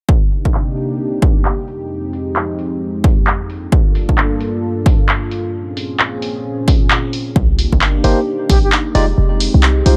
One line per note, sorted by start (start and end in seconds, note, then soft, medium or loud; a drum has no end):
0.09 1.66 C3 medium
0.09 1.66 A#3 medium
0.09 1.66 D4 medium
0.09 1.66 D#4 medium
0.09 3.46 G4 medium
0.09 kick loud
0.31 open hi-hat loud
0.45 kick medium
0.54 clap loud
0.77 open hi-hat medium
1.22 kick medium
1.45 clap loud
1.68 3.48 F2 medium
1.68 3.48 G#3 medium
1.68 3.48 C4 medium
1.68 3.48 D#4 medium
1.68 open hi-hat medium
2.13 open hi-hat medium
2.36 clap loud
2.59 open hi-hat medium
3.04 kick loud
3.04 open hi-hat loud
3.27 clap loud
3.50 5.52 G2 medium
3.50 5.52 A#3 medium
3.50 5.52 D4 medium
3.50 7.32 F4 medium
3.50 5.52 A4 medium
3.50 open hi-hat medium
3.72 kick loud
3.95 open hi-hat loud
4.09 kick medium
4.18 clap loud
4.41 open hi-hat medium
4.86 kick loud
4.86 open hi-hat medium
5.09 clap loud
5.31 open hi-hat medium
5.54 7.34 A#2 medium
5.54 7.34 C4 medium
5.54 7.34 C#4 medium
5.54 7.34 G#4 medium
5.77 open hi-hat medium
6.00 clap loud
6.22 open hi-hat medium
6.68 kick loud
6.68 open hi-hat medium
6.90 clap loud
7.13 open hi-hat medium
7.36 7.66 C2 medium
7.36 8.93 A#3 medium
7.36 8.93 D4 medium
7.36 9.97 D#4 medium
7.36 8.93 G4 medium
7.36 kick loud
7.59 open hi-hat medium
7.72 8.00 G1 medium
7.72 kick medium
7.81 clap loud
8.04 8.14 G1 medium
8.04 8.19 A#3 medium
8.04 8.19 D4 medium
8.04 8.19 D#4 medium
8.04 8.19 G4 medium
8.04 8.19 C5 medium
8.04 open hi-hat medium
8.49 8.60 A#1 medium
8.49 8.58 G4 medium
8.49 kick loud
8.49 open hi-hat medium
8.63 8.69 G4 medium
8.72 clap loud
8.95 9.13 F1 medium
8.95 9.05 G#3 medium
8.95 9.97 G#3 medium
8.95 9.97 C4 medium
8.95 9.05 D#4 medium
8.95 9.05 F4 medium
8.95 9.05 G4 medium
8.95 9.97 G4 medium
8.95 9.05 D5 loud
8.95 open hi-hat medium
9.18 9.48 F1 medium
9.40 open hi-hat loud
9.54 9.82 C2 loud
9.63 clap loud
9.86 9.96 C2 medium
9.86 9.95 G#3 medium
9.86 9.95 D#4 medium
9.86 9.95 F4 medium
9.86 9.95 G4 medium
9.86 9.95 C5 medium
9.86 open hi-hat medium